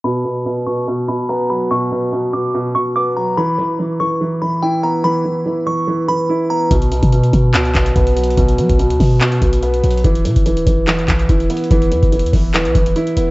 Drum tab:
HH |------------------------------------------------|------------------------------------------------|------------------------------------------------|------------------------------------------------|
CP |------------------------------------------------|------------------------------------------------|------------------------------------------------|------------------------------------------------|
BD |------------------------------------------------|------------------------------------------------|------------------------------------------------|------------------------------------------------|

HH |x--x--x--x--x--x--x-----x--x--x--x--x--x--x-x-x-|x--x--x--x--x--x--o-----x--x--x--x--x--x--x-x-x-|x--x--x--x--x--x--x-----x--x--x--x--x--x--x-x-x-|x--x--x--x--x-x-x-o-----x--x--x--x--x--x--x-----|
CP |------------------------x-----x-----------------|------------------------x-----------------------|------------------------x-----x-----------------|------------------------x-----------------------|
BD |o--------o--------o-----------o-----o-----------|o--------o--------o-----------o-----------------|o--------o--------o-----------o-----o-----------|o--------o--------o-----------o-----------------|